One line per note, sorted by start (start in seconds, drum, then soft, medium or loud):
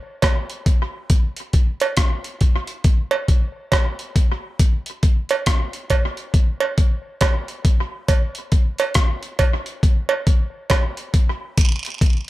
0.22 kick loud
0.22 cross-stick loud
0.22 closed hi-hat medium
0.22 cowbell medium
0.50 closed hi-hat soft
0.66 kick medium
0.66 closed hi-hat medium
1.10 kick loud
1.10 closed hi-hat medium
1.37 closed hi-hat medium
1.53 kick medium
1.53 closed hi-hat medium
1.80 closed hi-hat medium
1.80 cowbell medium
1.97 kick loud
1.97 cross-stick loud
1.97 closed hi-hat loud
2.24 closed hi-hat soft
2.41 kick medium
2.41 closed hi-hat medium
2.67 closed hi-hat soft
2.84 kick loud
2.84 closed hi-hat medium
3.11 cowbell medium
3.28 kick medium
3.28 closed hi-hat medium
3.72 kick loud
3.72 cross-stick loud
3.72 closed hi-hat medium
3.72 cowbell medium
3.99 closed hi-hat soft
4.16 kick medium
4.16 closed hi-hat medium
4.59 kick loud
4.59 closed hi-hat medium
4.86 closed hi-hat medium
5.03 kick medium
5.03 closed hi-hat medium
5.29 closed hi-hat medium
5.29 cowbell medium
5.46 kick loud
5.46 cross-stick loud
5.46 closed hi-hat loud
5.73 closed hi-hat soft
5.90 kick medium
5.90 closed hi-hat medium
5.90 cowbell medium
6.17 closed hi-hat soft
6.34 kick loud
6.34 closed hi-hat medium
6.60 cowbell medium
6.78 kick medium
6.78 closed hi-hat medium
7.21 kick loud
7.21 cross-stick loud
7.21 closed hi-hat medium
7.21 cowbell medium
7.48 closed hi-hat soft
7.65 kick medium
7.65 closed hi-hat medium
8.08 kick loud
8.08 closed hi-hat medium
8.08 cowbell medium
8.35 closed hi-hat medium
8.52 kick medium
8.52 closed hi-hat medium
8.78 closed hi-hat medium
8.78 cowbell medium
8.94 kick loud
8.94 cross-stick loud
8.94 closed hi-hat loud
9.23 closed hi-hat soft
9.39 kick medium
9.39 closed hi-hat medium
9.39 cowbell medium
9.66 closed hi-hat soft
9.83 kick loud
9.83 closed hi-hat medium
10.09 cowbell medium
10.27 kick medium
10.27 closed hi-hat medium
10.70 kick loud
10.70 cross-stick loud
10.70 closed hi-hat medium
10.70 cowbell medium
10.97 closed hi-hat soft
11.14 kick medium
11.14 closed hi-hat medium
11.57 kick loud
11.57 closed hi-hat medium
11.57 vibraslap medium
11.85 closed hi-hat medium
12.01 kick medium
12.01 closed hi-hat medium